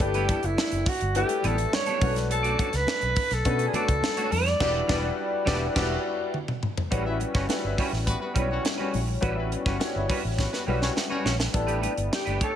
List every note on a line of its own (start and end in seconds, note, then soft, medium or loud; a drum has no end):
0.00 0.32 G1 loud
0.00 0.81 A3 medium
0.00 0.82 D4 medium
0.00 0.82 E4 medium
0.00 0.82 G4 medium
0.00 0.47 G4 medium
0.00 0.82 B4 medium
0.00 muted clean electric guitar stroke soft
0.00 kick loud
0.00 closed hi-hat medium
0.14 0.27 G3 medium
0.14 0.28 B3 medium
0.14 0.28 E4 medium
0.14 0.27 B4 medium
0.14 closed hi-hat medium
0.28 0.39 G3 medium
0.28 0.39 B3 medium
0.28 0.39 E4 medium
0.28 0.40 A4 medium
0.28 kick loud
0.28 closed hi-hat medium
0.28 muted conga soft
0.43 0.54 F#1 medium
0.43 0.90 E4 medium
0.43 muted clean electric guitar stroke soft
0.43 closed hi-hat medium
0.57 muted clean electric guitar stroke medium
0.57 snare loud
0.57 high conga medium
0.71 0.83 F#1 medium
0.71 muted clean electric guitar stroke soft
0.71 closed hi-hat medium
0.86 1.16 F#4 medium
0.86 kick loud
0.86 open hi-hat medium
1.00 1.22 G1 medium
1.00 muted clean electric guitar stroke soft
1.00 closed hi-hat medium
1.15 1.97 A3 medium
1.15 1.97 D4 medium
1.15 1.97 E4 medium
1.15 1.97 G4 medium
1.15 1.47 G4 medium
1.15 1.97 B4 medium
1.15 closed hi-hat medium
1.15 muted conga medium
1.29 muted clean electric guitar stroke soft
1.29 closed hi-hat medium
1.43 1.65 A1 medium
1.43 1.56 G3 medium
1.43 1.57 B3 medium
1.43 1.57 E4 medium
1.43 1.75 A4 medium
1.43 1.56 B4 medium
1.43 closed hi-hat medium
1.43 muted conga medium
1.43 low conga medium
1.57 muted clean electric guitar stroke soft
1.57 closed hi-hat medium
1.72 2.16 C#5 loud
1.72 muted clean electric guitar stroke soft
1.72 snare loud
1.72 high conga medium
1.86 2.00 G3 medium
1.86 2.00 B3 medium
1.86 2.00 E4 medium
1.86 2.00 A4 medium
1.86 closed hi-hat medium
2.00 2.54 B1 loud
2.00 2.94 A3 medium
2.00 2.94 C#4 medium
2.00 2.94 D4 medium
2.00 2.94 F#4 medium
2.00 2.94 B4 medium
2.00 muted clean electric guitar stroke soft
2.00 kick loud
2.00 open hi-hat medium
2.00 high conga medium
2.15 muted clean electric guitar stroke soft
2.15 snare soft
2.15 closed hi-hat medium
2.30 2.77 A4 loud
2.30 muted clean electric guitar stroke soft
2.30 closed hi-hat medium
2.43 2.56 A3 medium
2.43 2.57 D4 medium
2.43 2.57 F#4 medium
2.43 2.57 D5 medium
2.43 closed hi-hat medium
2.57 2.68 A3 medium
2.57 2.69 D4 medium
2.57 2.69 F#4 medium
2.57 2.70 C#5 medium
2.57 kick loud
2.57 closed hi-hat medium
2.57 muted conga soft
2.72 2.84 C#2 loud
2.72 3.35 B4 loud
2.72 muted clean electric guitar stroke medium
2.72 snare soft
2.72 closed hi-hat medium
2.87 muted clean electric guitar stroke soft
2.87 snare loud
2.87 high conga medium
3.01 3.13 B1 medium
3.01 muted clean electric guitar stroke soft
3.01 closed hi-hat soft
3.16 kick loud
3.16 open hi-hat medium
3.31 3.42 B1 medium
3.31 3.67 A4 loud
3.31 muted clean electric guitar stroke soft
3.31 snare soft
3.31 closed hi-hat medium
3.45 3.67 B2 loud
3.45 4.27 A3 medium
3.45 4.27 C#4 medium
3.45 4.27 D4 medium
3.45 4.27 F#4 medium
3.45 4.27 B4 loud
3.45 kick medium
3.45 closed hi-hat medium
3.45 muted conga soft
3.59 muted clean electric guitar stroke soft
3.59 closed hi-hat medium
3.68 3.77 G#4 medium
3.73 3.87 A3 medium
3.73 3.87 D4 medium
3.73 3.88 F#4 medium
3.73 4.33 A4 loud
3.73 3.88 D5 medium
3.73 closed hi-hat medium
3.73 muted conga medium
3.73 low conga medium
3.88 3.99 C#2 medium
3.88 muted clean electric guitar stroke soft
3.88 kick medium
3.88 closed hi-hat medium
4.03 muted clean electric guitar stroke soft
4.03 snare loud
4.03 high conga medium
4.17 4.30 A3 medium
4.17 4.30 D4 medium
4.17 4.31 F#4 medium
4.17 4.30 C#5 medium
4.17 closed hi-hat medium
4.31 4.53 F2 medium
4.31 5.19 D5 loud
4.31 muted clean electric guitar stroke soft
4.31 open hi-hat medium
4.31 high conga medium
4.46 muted clean electric guitar stroke medium
4.46 snare soft
4.46 closed hi-hat medium
4.60 4.80 E1 loud
4.60 4.80 G3 loud
4.60 4.81 G3 loud
4.60 4.75 B3 loud
4.60 4.80 D4 loud
4.60 4.75 D4 medium
4.60 4.80 E4 loud
4.60 4.80 F#4 loud
4.60 4.81 F#4 loud
4.60 4.75 G4 loud
4.60 4.80 B4 loud
4.60 4.75 D5 loud
4.60 kick loud
4.60 snare loud
4.60 crash medium
4.87 5.09 E1 loud
4.87 5.08 G3 medium
4.87 5.09 G3 loud
4.87 5.04 B3 loud
4.87 5.08 D4 loud
4.87 5.03 D4 loud
4.87 5.09 D4 loud
4.87 5.09 E4 loud
4.87 5.09 F#4 loud
4.87 5.04 G4 medium
4.87 5.09 B4 loud
4.87 5.10 B4 loud
4.87 5.03 D5 loud
4.87 kick loud
4.87 snare loud
5.45 5.67 E1 loud
5.45 5.66 G3 loud
5.45 5.62 B3 loud
5.45 5.66 D4 loud
5.45 5.67 D4 loud
5.45 5.62 D4 loud
5.45 5.66 E4 medium
5.45 5.66 F#4 loud
5.45 5.67 F#4 loud
5.45 5.62 G4 loud
5.45 5.67 B4 loud
5.45 5.62 D5 loud
5.45 kick loud
5.45 snare loud
5.75 5.96 E1 loud
5.75 5.95 G3 medium
5.75 5.95 G3 loud
5.75 5.90 B3 loud
5.75 5.90 D4 medium
5.75 5.95 D4 medium
5.75 5.96 D4 loud
5.75 5.96 E4 loud
5.75 5.96 F#4 medium
5.75 5.96 F#4 loud
5.75 5.90 G4 loud
5.75 5.96 B4 loud
5.75 5.90 D5 loud
5.75 kick loud
5.75 snare loud
5.75 crash medium
6.34 high tom medium
6.48 mid tom medium
6.63 mid tom medium
6.77 floor tom medium
6.91 7.23 A1 medium
6.91 7.32 G3 medium
6.91 7.04 G3 medium
6.91 7.32 C#4 medium
6.91 7.05 C#4 medium
6.91 7.32 E4 medium
6.91 7.32 F#4 medium
6.91 7.05 F#4 loud
6.91 7.33 B4 loud
6.91 7.04 B4 medium
6.91 kick medium
6.91 closed hi-hat medium
7.06 7.18 C#4 medium
7.06 7.18 E4 medium
7.06 7.18 B4 medium
7.06 7.18 E5 medium
7.06 muted clean electric guitar stroke soft
7.19 muted clean electric guitar stroke soft
7.19 closed hi-hat medium
7.19 muted conga soft
7.34 7.45 G1 medium
7.34 7.46 G3 medium
7.34 7.46 G3 soft
7.34 7.46 C#4 medium
7.34 7.45 C#4 medium
7.34 7.46 F#4 medium
7.34 7.45 F#4 medium
7.34 7.45 B4 medium
7.34 7.46 C#5 medium
7.34 kick loud
7.34 snare soft
7.48 8.10 G3 medium
7.48 8.10 C#4 medium
7.48 8.10 E4 medium
7.48 8.11 F#4 medium
7.48 8.11 B4 medium
7.48 snare loud
7.48 closed hi-hat loud
7.48 high conga medium
7.63 7.75 G1 medium
7.63 7.75 C#4 medium
7.63 7.75 E4 medium
7.63 7.75 B4 medium
7.63 7.75 E5 medium
7.63 muted clean electric guitar stroke soft
7.78 7.91 G3 medium
7.78 7.90 G3 medium
7.78 7.92 C#4 medium
7.78 7.90 C#4 medium
7.78 7.90 F#4 medium
7.78 7.92 F#4 medium
7.78 7.91 B4 medium
7.78 7.90 C#5 medium
7.78 kick medium
7.78 open hi-hat medium
7.92 8.14 A1 medium
7.92 muted clean electric guitar stroke soft
7.92 snare soft
8.06 8.18 G3 medium
8.06 8.18 B3 medium
8.06 8.18 F#4 medium
8.06 8.18 B4 loud
8.06 kick medium
8.06 closed hi-hat medium
8.06 muted conga soft
8.21 8.33 G3 medium
8.21 8.33 B3 medium
8.21 8.33 F#4 medium
8.21 8.33 B4 medium
8.21 muted clean electric guitar stroke soft
8.34 8.57 B1 medium
8.34 8.48 G3 medium
8.34 8.97 G3 medium
8.34 8.48 C#4 medium
8.34 8.97 C#4 medium
8.34 8.97 E4 medium
8.34 8.48 F#4 medium
8.34 8.97 F#4 medium
8.34 8.48 B4 medium
8.34 8.98 C#5 medium
8.34 kick medium
8.34 closed hi-hat medium
8.34 muted conga soft
8.34 low conga medium
8.49 8.63 G3 medium
8.49 8.62 C#4 medium
8.49 8.62 F#4 medium
8.49 8.62 C#5 medium
8.49 muted clean electric guitar stroke soft
8.64 muted clean electric guitar stroke soft
8.64 snare loud
8.64 closed hi-hat medium
8.64 high conga medium
8.78 9.02 G3 medium
8.78 8.92 G3 medium
8.78 9.02 C#4 medium
8.78 8.92 C#4 medium
8.78 9.02 F#4 medium
8.78 8.92 F#4 medium
8.78 8.92 B4 medium
8.78 9.02 C#5 medium
8.78 high conga soft
8.93 9.15 A#1 medium
8.93 muted clean electric guitar stroke soft
8.93 open hi-hat medium
8.93 high conga medium
9.07 muted clean electric guitar stroke soft
9.21 9.54 A1 loud
9.21 9.63 G3 medium
9.21 9.35 G3 medium
9.21 9.63 C#4 medium
9.21 9.36 C#4 medium
9.21 9.63 E4 medium
9.21 9.63 F#4 medium
9.21 9.36 F#4 medium
9.21 9.63 B4 medium
9.21 9.35 B4 medium
9.21 kick loud
9.21 closed hi-hat medium
9.36 9.48 C#4 medium
9.36 9.48 E4 medium
9.36 9.48 B4 medium
9.36 9.48 E5 medium
9.36 muted clean electric guitar stroke soft
9.52 muted clean electric guitar stroke soft
9.52 closed hi-hat medium
9.52 muted conga soft
9.66 9.77 G1 medium
9.66 9.78 G3 medium
9.66 9.77 G3 medium
9.66 9.78 C#4 medium
9.66 9.77 C#4 medium
9.66 9.78 F#4 medium
9.66 9.77 F#4 medium
9.66 9.76 B4 medium
9.66 9.78 C#5 medium
9.66 kick loud
9.66 snare soft
9.78 10.41 G3 medium
9.78 10.41 C#4 medium
9.78 10.41 E4 medium
9.78 10.41 F#4 medium
9.78 10.42 C#5 medium
9.78 snare loud
9.78 closed hi-hat medium
9.78 high conga medium
9.94 10.06 G1 medium
9.94 10.06 C#4 medium
9.94 10.06 E4 medium
9.94 10.06 B4 medium
9.94 10.06 E5 medium
9.94 muted clean electric guitar stroke soft
10.08 10.20 G3 medium
10.08 10.22 G3 medium
10.08 10.20 C#4 medium
10.08 10.23 C#4 medium
10.08 10.20 F#4 medium
10.08 10.23 F#4 medium
10.08 10.23 B4 medium
10.08 10.20 C#5 medium
10.08 kick medium
10.08 open hi-hat medium
10.25 10.46 A1 medium
10.25 muted clean electric guitar stroke soft
10.38 10.50 G3 medium
10.38 10.49 B3 medium
10.38 10.50 F#4 medium
10.38 10.49 B4 medium
10.38 kick medium
10.38 snare soft
10.38 muted conga soft
10.52 10.64 G3 medium
10.52 10.64 B3 medium
10.52 10.64 F#4 medium
10.52 10.64 B4 medium
10.52 muted clean electric guitar stroke soft
10.52 snare soft
10.66 10.88 B1 medium
10.66 10.80 G3 medium
10.66 11.28 G3 medium
10.66 10.80 C#4 medium
10.66 11.29 C#4 medium
10.66 11.29 E4 medium
10.66 11.29 F#4 medium
10.66 10.81 F#4 medium
10.66 11.29 B4 medium
10.66 10.80 B4 medium
10.66 muted conga soft
10.81 10.93 G3 medium
10.81 10.93 C#4 medium
10.81 10.93 F#4 medium
10.81 10.93 C#5 medium
10.81 muted clean electric guitar stroke soft
10.81 snare medium
10.96 muted clean electric guitar stroke soft
10.96 snare medium
10.96 high conga medium
11.09 11.33 G3 medium
11.09 11.22 G3 medium
11.09 11.33 C#4 medium
11.09 11.23 C#4 medium
11.09 11.33 F#4 medium
11.09 11.23 F#4 medium
11.09 11.23 B4 medium
11.09 11.33 C#5 medium
11.09 high conga soft
11.23 11.46 A#1 medium
11.23 11.34 G3 medium
11.23 11.35 C#4 medium
11.23 11.35 F#4 medium
11.23 11.36 C#5 medium
11.23 snare medium
11.23 high conga medium
11.39 muted clean electric guitar stroke soft
11.39 snare medium
11.52 11.86 A1 medium
11.52 12.35 G3 medium
11.52 12.36 B3 medium
11.52 12.36 D4 medium
11.52 12.36 E4 medium
11.52 12.36 A4 medium
11.52 muted clean electric guitar stroke soft
11.52 kick medium
11.52 closed hi-hat medium
11.67 11.80 A3 medium
11.67 11.80 D4 medium
11.67 11.81 G4 medium
11.67 11.81 B4 medium
11.67 closed hi-hat soft
11.81 11.92 A3 medium
11.81 11.92 D4 medium
11.81 11.93 G4 medium
11.81 11.93 B4 medium
11.81 closed hi-hat medium
11.81 muted conga soft
11.96 12.08 G1 medium
11.96 muted clean electric guitar stroke medium
11.96 closed hi-hat medium
12.12 12.40 G4 medium
12.12 muted clean electric guitar stroke soft
12.12 snare loud
12.12 high conga medium
12.25 12.37 G1 medium
12.25 12.39 A3 medium
12.25 12.39 D4 medium
12.25 12.39 G4 medium
12.25 12.39 B4 medium
12.25 closed hi-hat soft
12.40 12.51 A3 medium
12.40 12.51 D4 medium
12.40 12.51 G4 medium
12.40 12.56 A4 medium
12.40 12.52 C#5 medium
12.40 kick medium
12.40 closed hi-hat medium